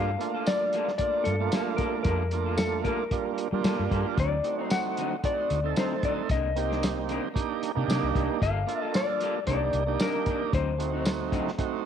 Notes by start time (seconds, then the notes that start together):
Already playing: G2 G3 A#3 D4 F4 A4 F5
0.19 A3 A#3 D4 F4, muted clean electric guitar stroke, closed hi-hat
0.34 A#3 F4 A4
0.46 D5, muted clean electric guitar stroke, snare, closed hi-hat, tambourine
0.62 muted clean electric guitar stroke
0.73 G3 A#3 F4 A4, closed hi-hat
0.88 muted clean electric guitar stroke, snare
0.98 A3 A#3 D4 F4 D5, kick, closed hi-hat
1.14 muted clean electric guitar stroke
1.24 G2 A4, muted clean electric guitar stroke, closed hi-hat
1.39 A3 A#3 D4 F4, muted clean electric guitar stroke
1.52 G3 A#3 F4 A4, snare, closed hi-hat, tambourine
1.77 G3 A#3 F4 A#4, kick, closed hi-hat
1.81 A4
1.93 muted clean electric guitar stroke
2.03 F2 G3 A#3 F4 A#4, kick, closed hi-hat
2.07 A4
2.31 A3 A#3 D4 F4, muted clean electric guitar stroke, closed hi-hat
2.46 A#3 F4 A4
2.58 A4, muted clean electric guitar stroke, snare, closed hi-hat, tambourine
2.72 muted clean electric guitar stroke
2.84 G3 A#3 F4 A4 A#4, kick, closed hi-hat
2.99 muted clean electric guitar stroke
3.11 G3 A#3 D4 F4, kick, closed hi-hat
3.25 muted clean electric guitar stroke
3.37 muted clean electric guitar stroke, closed hi-hat
3.51 G3 A#3 D4 F4, muted clean electric guitar stroke
3.64 G3 A#3 F4 A4, snare, closed hi-hat, tambourine
3.79 G2
3.90 G2 G3 A#3 F4 A4, kick, closed hi-hat
4.05 muted clean electric guitar stroke
4.17 D2 D3 F#3 C4 D#4 D5, kick, closed hi-hat
4.43 A3 C4 D#4 F#4, muted clean electric guitar stroke, closed hi-hat
4.59 F#3 C4 D#4 C5
4.70 F#5, muted clean electric guitar stroke, snare, closed hi-hat, tambourine
4.86 muted clean electric guitar stroke
4.97 D3 F#3 C4 D#4, closed hi-hat
5.12 muted clean electric guitar stroke
5.23 A3 C4 D#4 F#4 D5, kick, closed hi-hat
5.38 muted clean electric guitar stroke
5.50 D2, muted clean electric guitar stroke, closed hi-hat
5.64 A3 C4 D#4 A4, muted clean electric guitar stroke
5.76 D3 F#3 C4 D#4 C5, snare, closed hi-hat, tambourine
6.03 D3 F#3 C4 D#4 D5, kick, closed hi-hat
6.19 muted clean electric guitar stroke
6.29 C2 C3 D#3 A#3 D4 D#5, kick, closed hi-hat
6.56 A#3 C4 D#4 G4, muted clean electric guitar stroke, closed hi-hat
6.70 D#3 A#3 D4, snare
6.83 muted clean electric guitar stroke, snare, closed hi-hat, tambourine
6.97 muted clean electric guitar stroke
7.09 C3 D#3 A#3 D4, closed hi-hat
7.23 muted clean electric guitar stroke
7.34 A#3 D4 D#4 G4, kick, closed hi-hat
7.50 muted clean electric guitar stroke
7.62 muted clean electric guitar stroke, closed hi-hat
7.75 C3 A#3 D4 D#4 G4, muted clean electric guitar stroke
7.88 C3 D#3 A#3 D4, snare, closed hi-hat, tambourine
8.03 C2
8.15 C2 C3 D#3 A#3 D4, kick, closed hi-hat
8.30 muted clean electric guitar stroke
8.41 G1 G3 A#3 F4 A4 F5, kick, closed hi-hat
8.67 A#3 D4 F4 A4, muted clean electric guitar stroke, closed hi-hat
8.82 A#3 F4 A4
8.94 D5, muted clean electric guitar stroke, snare, closed hi-hat, tambourine
9.10 muted clean electric guitar stroke
9.20 G3 A#3 F4 A4, closed hi-hat
9.35 muted clean electric guitar stroke
9.46 C2 C3 D#3 A#3 D4 D#4 G4 D5, kick, closed hi-hat
9.63 muted clean electric guitar stroke
9.73 C2, muted clean electric guitar stroke, closed hi-hat
9.87 A#3 D4 D#4 G4, muted clean electric guitar stroke
10.00 C3 D#3 A#3 D4 A#4, snare, closed hi-hat, tambourine
10.26 C3 D#3 A#3, kick, closed hi-hat
10.30 D4
10.41 muted clean electric guitar stroke
10.53 D2 D3 F#3 C4 D#4 C5, kick, closed hi-hat
10.78 A3 C4 D#4 F#4, muted clean electric guitar stroke, closed hi-hat
10.94 F#3 C4 D#4
11.05 muted clean electric guitar stroke, snare, closed hi-hat, tambourine
11.20 muted clean electric guitar stroke
11.32 D3 F#3 C4 D#4, kick, closed hi-hat
11.47 muted clean electric guitar stroke, snare
11.58 A3 C4 D#4 F#4, kick, closed hi-hat
11.73 muted clean electric guitar stroke